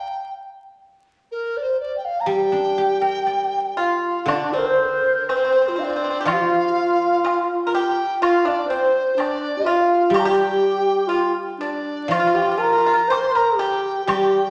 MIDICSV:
0, 0, Header, 1, 6, 480
1, 0, Start_track
1, 0, Tempo, 974026
1, 155, Time_signature, 2, 2, 24, 8
1, 1116, Tempo, 1001669
1, 3036, Tempo, 967742
1, 5436, Tempo, 991736
1, 7077, End_track
2, 0, Start_track
2, 0, Title_t, "Dizi"
2, 0, Program_c, 0, 73
2, 0, Note_on_c, 0, 79, 68
2, 159, Note_off_c, 0, 79, 0
2, 646, Note_on_c, 0, 70, 73
2, 773, Note_on_c, 0, 74, 60
2, 780, Note_off_c, 0, 70, 0
2, 797, Note_on_c, 0, 72, 65
2, 802, Note_off_c, 0, 74, 0
2, 882, Note_off_c, 0, 72, 0
2, 885, Note_on_c, 0, 74, 74
2, 965, Note_off_c, 0, 74, 0
2, 971, Note_on_c, 0, 79, 56
2, 1007, Note_on_c, 0, 77, 81
2, 1015, Note_off_c, 0, 79, 0
2, 1084, Note_on_c, 0, 82, 62
2, 1092, Note_off_c, 0, 77, 0
2, 1118, Note_on_c, 0, 79, 94
2, 1125, Note_off_c, 0, 82, 0
2, 1837, Note_off_c, 0, 79, 0
2, 1847, Note_on_c, 0, 77, 69
2, 2077, Note_off_c, 0, 77, 0
2, 2077, Note_on_c, 0, 77, 66
2, 2093, Note_on_c, 0, 74, 72
2, 2098, Note_off_c, 0, 77, 0
2, 2207, Note_on_c, 0, 72, 67
2, 2214, Note_off_c, 0, 74, 0
2, 2324, Note_off_c, 0, 72, 0
2, 2327, Note_on_c, 0, 72, 59
2, 2350, Note_on_c, 0, 70, 64
2, 2354, Note_off_c, 0, 72, 0
2, 2566, Note_on_c, 0, 72, 76
2, 2573, Note_off_c, 0, 70, 0
2, 2805, Note_on_c, 0, 77, 66
2, 2812, Note_off_c, 0, 72, 0
2, 2827, Note_on_c, 0, 74, 72
2, 2832, Note_off_c, 0, 77, 0
2, 3037, Note_on_c, 0, 79, 83
2, 3045, Note_off_c, 0, 74, 0
2, 3059, Note_on_c, 0, 77, 90
2, 3064, Note_off_c, 0, 79, 0
2, 3638, Note_off_c, 0, 77, 0
2, 3767, Note_on_c, 0, 79, 83
2, 4003, Note_off_c, 0, 79, 0
2, 4006, Note_on_c, 0, 77, 94
2, 4129, Note_on_c, 0, 74, 81
2, 4136, Note_off_c, 0, 77, 0
2, 4246, Note_off_c, 0, 74, 0
2, 4253, Note_on_c, 0, 72, 76
2, 4488, Note_on_c, 0, 74, 90
2, 4495, Note_off_c, 0, 72, 0
2, 4730, Note_on_c, 0, 77, 76
2, 4738, Note_off_c, 0, 74, 0
2, 4960, Note_off_c, 0, 77, 0
2, 4962, Note_on_c, 0, 79, 80
2, 4981, Note_on_c, 0, 82, 76
2, 4988, Note_off_c, 0, 79, 0
2, 5015, Note_on_c, 0, 79, 93
2, 5023, Note_off_c, 0, 82, 0
2, 5543, Note_off_c, 0, 79, 0
2, 5677, Note_on_c, 0, 74, 70
2, 5918, Note_on_c, 0, 77, 91
2, 5925, Note_off_c, 0, 74, 0
2, 6042, Note_on_c, 0, 79, 83
2, 6049, Note_off_c, 0, 77, 0
2, 6161, Note_on_c, 0, 82, 82
2, 6168, Note_off_c, 0, 79, 0
2, 6403, Note_on_c, 0, 86, 91
2, 6410, Note_off_c, 0, 82, 0
2, 6423, Note_on_c, 0, 84, 99
2, 6428, Note_off_c, 0, 86, 0
2, 6524, Note_on_c, 0, 82, 85
2, 6531, Note_off_c, 0, 84, 0
2, 6638, Note_on_c, 0, 79, 82
2, 6646, Note_off_c, 0, 82, 0
2, 6871, Note_off_c, 0, 79, 0
2, 6874, Note_on_c, 0, 79, 94
2, 7077, Note_off_c, 0, 79, 0
2, 7077, End_track
3, 0, Start_track
3, 0, Title_t, "Xiao"
3, 0, Program_c, 1, 77
3, 1836, Note_on_c, 1, 65, 56
3, 2077, Note_on_c, 1, 62, 66
3, 2084, Note_off_c, 1, 65, 0
3, 2203, Note_on_c, 1, 72, 76
3, 2210, Note_off_c, 1, 62, 0
3, 2228, Note_on_c, 1, 70, 71
3, 2235, Note_off_c, 1, 72, 0
3, 2264, Note_on_c, 1, 72, 83
3, 2271, Note_off_c, 1, 70, 0
3, 2553, Note_off_c, 1, 72, 0
3, 2555, Note_on_c, 1, 72, 69
3, 2753, Note_on_c, 1, 65, 57
3, 2760, Note_off_c, 1, 72, 0
3, 2804, Note_on_c, 1, 62, 59
3, 2811, Note_off_c, 1, 65, 0
3, 3043, Note_on_c, 1, 65, 64
3, 3050, Note_off_c, 1, 62, 0
3, 3068, Note_on_c, 1, 67, 61
3, 3076, Note_off_c, 1, 65, 0
3, 3105, Note_on_c, 1, 65, 76
3, 3112, Note_off_c, 1, 67, 0
3, 3875, Note_off_c, 1, 65, 0
3, 3997, Note_on_c, 1, 65, 78
3, 4118, Note_on_c, 1, 62, 73
3, 4125, Note_off_c, 1, 65, 0
3, 4225, Note_off_c, 1, 62, 0
3, 4227, Note_on_c, 1, 72, 76
3, 4457, Note_off_c, 1, 72, 0
3, 4469, Note_on_c, 1, 62, 62
3, 4665, Note_off_c, 1, 62, 0
3, 4678, Note_on_c, 1, 67, 49
3, 4709, Note_on_c, 1, 65, 67
3, 4716, Note_off_c, 1, 67, 0
3, 4949, Note_on_c, 1, 67, 73
3, 4956, Note_off_c, 1, 65, 0
3, 5017, Note_off_c, 1, 67, 0
3, 5019, Note_on_c, 1, 67, 75
3, 5418, Note_on_c, 1, 65, 64
3, 5426, Note_off_c, 1, 67, 0
3, 5542, Note_off_c, 1, 65, 0
3, 5664, Note_on_c, 1, 62, 60
3, 5923, Note_on_c, 1, 65, 73
3, 5930, Note_off_c, 1, 62, 0
3, 6035, Note_on_c, 1, 67, 67
3, 6042, Note_off_c, 1, 65, 0
3, 6148, Note_on_c, 1, 70, 70
3, 6155, Note_off_c, 1, 67, 0
3, 6389, Note_on_c, 1, 72, 73
3, 6396, Note_off_c, 1, 70, 0
3, 6423, Note_on_c, 1, 70, 65
3, 6430, Note_off_c, 1, 72, 0
3, 6451, Note_on_c, 1, 72, 68
3, 6458, Note_off_c, 1, 70, 0
3, 6504, Note_on_c, 1, 70, 68
3, 6511, Note_off_c, 1, 72, 0
3, 6625, Note_on_c, 1, 67, 58
3, 6632, Note_off_c, 1, 70, 0
3, 6855, Note_off_c, 1, 67, 0
3, 6858, Note_on_c, 1, 67, 69
3, 7077, Note_off_c, 1, 67, 0
3, 7077, End_track
4, 0, Start_track
4, 0, Title_t, "Pipa"
4, 0, Program_c, 2, 105
4, 1837, Note_on_c, 2, 65, 55
4, 2064, Note_off_c, 2, 65, 0
4, 2082, Note_on_c, 2, 62, 64
4, 2195, Note_off_c, 2, 62, 0
4, 2204, Note_on_c, 2, 60, 55
4, 2546, Note_off_c, 2, 60, 0
4, 2568, Note_on_c, 2, 60, 59
4, 2598, Note_off_c, 2, 60, 0
4, 2604, Note_on_c, 2, 60, 39
4, 2635, Note_off_c, 2, 60, 0
4, 2641, Note_on_c, 2, 60, 44
4, 2672, Note_off_c, 2, 60, 0
4, 2677, Note_on_c, 2, 60, 40
4, 2708, Note_off_c, 2, 60, 0
4, 2723, Note_on_c, 2, 60, 39
4, 2748, Note_off_c, 2, 60, 0
4, 2753, Note_on_c, 2, 60, 35
4, 2782, Note_off_c, 2, 60, 0
4, 2790, Note_on_c, 2, 60, 42
4, 2818, Note_off_c, 2, 60, 0
4, 2830, Note_on_c, 2, 60, 33
4, 2851, Note_off_c, 2, 60, 0
4, 2856, Note_on_c, 2, 60, 38
4, 2882, Note_off_c, 2, 60, 0
4, 2888, Note_on_c, 2, 60, 37
4, 2919, Note_off_c, 2, 60, 0
4, 2925, Note_on_c, 2, 60, 35
4, 2950, Note_off_c, 2, 60, 0
4, 2955, Note_on_c, 2, 60, 36
4, 2988, Note_off_c, 2, 60, 0
4, 3005, Note_on_c, 2, 67, 47
4, 3031, Note_off_c, 2, 67, 0
4, 3033, Note_on_c, 2, 65, 66
4, 3499, Note_off_c, 2, 65, 0
4, 3519, Note_on_c, 2, 65, 65
4, 3714, Note_off_c, 2, 65, 0
4, 3728, Note_on_c, 2, 70, 52
4, 3763, Note_off_c, 2, 70, 0
4, 3767, Note_on_c, 2, 67, 67
4, 3990, Note_off_c, 2, 67, 0
4, 4003, Note_on_c, 2, 65, 76
4, 4115, Note_off_c, 2, 65, 0
4, 4118, Note_on_c, 2, 62, 62
4, 4232, Note_off_c, 2, 62, 0
4, 4241, Note_on_c, 2, 60, 64
4, 4465, Note_off_c, 2, 60, 0
4, 4478, Note_on_c, 2, 62, 67
4, 4700, Note_off_c, 2, 62, 0
4, 4718, Note_on_c, 2, 65, 64
4, 4937, Note_off_c, 2, 65, 0
4, 4956, Note_on_c, 2, 67, 78
4, 5006, Note_off_c, 2, 67, 0
4, 5011, Note_on_c, 2, 67, 77
4, 5401, Note_off_c, 2, 67, 0
4, 5425, Note_on_c, 2, 65, 65
4, 5537, Note_off_c, 2, 65, 0
4, 5677, Note_on_c, 2, 62, 54
4, 5901, Note_off_c, 2, 62, 0
4, 5919, Note_on_c, 2, 65, 72
4, 5952, Note_off_c, 2, 65, 0
4, 5962, Note_on_c, 2, 65, 51
4, 5992, Note_off_c, 2, 65, 0
4, 5999, Note_on_c, 2, 65, 59
4, 6028, Note_off_c, 2, 65, 0
4, 6035, Note_on_c, 2, 65, 48
4, 6064, Note_off_c, 2, 65, 0
4, 6071, Note_on_c, 2, 65, 42
4, 6101, Note_off_c, 2, 65, 0
4, 6116, Note_on_c, 2, 65, 39
4, 6140, Note_off_c, 2, 65, 0
4, 6146, Note_on_c, 2, 65, 44
4, 6168, Note_off_c, 2, 65, 0
4, 6174, Note_on_c, 2, 65, 38
4, 6206, Note_off_c, 2, 65, 0
4, 6217, Note_on_c, 2, 65, 43
4, 6239, Note_off_c, 2, 65, 0
4, 6245, Note_on_c, 2, 65, 42
4, 6277, Note_off_c, 2, 65, 0
4, 6285, Note_on_c, 2, 65, 53
4, 6314, Note_off_c, 2, 65, 0
4, 6320, Note_on_c, 2, 65, 53
4, 6351, Note_off_c, 2, 65, 0
4, 6400, Note_on_c, 2, 72, 69
4, 6511, Note_off_c, 2, 72, 0
4, 6521, Note_on_c, 2, 70, 65
4, 6631, Note_off_c, 2, 70, 0
4, 6637, Note_on_c, 2, 67, 74
4, 6860, Note_off_c, 2, 67, 0
4, 6874, Note_on_c, 2, 67, 71
4, 7077, Note_off_c, 2, 67, 0
4, 7077, End_track
5, 0, Start_track
5, 0, Title_t, "Guzheng"
5, 0, Program_c, 3, 107
5, 1115, Note_on_c, 3, 55, 56
5, 1239, Note_on_c, 3, 62, 38
5, 1362, Note_on_c, 3, 67, 40
5, 1475, Note_on_c, 3, 70, 37
5, 1596, Note_on_c, 3, 74, 37
5, 2070, Note_on_c, 3, 50, 54
5, 2205, Note_off_c, 3, 62, 0
5, 2329, Note_off_c, 3, 67, 0
5, 2446, Note_off_c, 3, 70, 0
5, 2564, Note_off_c, 3, 55, 0
5, 2566, Note_off_c, 3, 74, 0
5, 3028, Note_on_c, 3, 53, 54
5, 3515, Note_off_c, 3, 50, 0
5, 4478, Note_off_c, 3, 53, 0
5, 4935, Note_on_c, 3, 55, 58
5, 5906, Note_on_c, 3, 53, 54
5, 6389, Note_off_c, 3, 55, 0
5, 6871, Note_on_c, 3, 55, 55
5, 7077, Note_off_c, 3, 53, 0
5, 7077, Note_off_c, 3, 55, 0
5, 7077, End_track
6, 0, Start_track
6, 0, Title_t, "Drums"
6, 2084, Note_on_c, 9, 76, 50
6, 2132, Note_off_c, 9, 76, 0
6, 2566, Note_on_c, 9, 76, 37
6, 2566, Note_on_c, 9, 77, 32
6, 2614, Note_off_c, 9, 76, 0
6, 2614, Note_off_c, 9, 77, 0
6, 3040, Note_on_c, 9, 76, 53
6, 3089, Note_off_c, 9, 76, 0
6, 3525, Note_on_c, 9, 76, 31
6, 3525, Note_on_c, 9, 77, 36
6, 3575, Note_off_c, 9, 76, 0
6, 3575, Note_off_c, 9, 77, 0
6, 4008, Note_on_c, 9, 76, 54
6, 4057, Note_off_c, 9, 76, 0
6, 4488, Note_on_c, 9, 76, 38
6, 4488, Note_on_c, 9, 77, 34
6, 4538, Note_off_c, 9, 76, 0
6, 4538, Note_off_c, 9, 77, 0
6, 4962, Note_on_c, 9, 76, 52
6, 5012, Note_off_c, 9, 76, 0
6, 5923, Note_on_c, 9, 76, 50
6, 5971, Note_off_c, 9, 76, 0
6, 6406, Note_on_c, 9, 76, 33
6, 6406, Note_on_c, 9, 77, 30
6, 6455, Note_off_c, 9, 76, 0
6, 6455, Note_off_c, 9, 77, 0
6, 6878, Note_on_c, 9, 76, 54
6, 6926, Note_off_c, 9, 76, 0
6, 7077, End_track
0, 0, End_of_file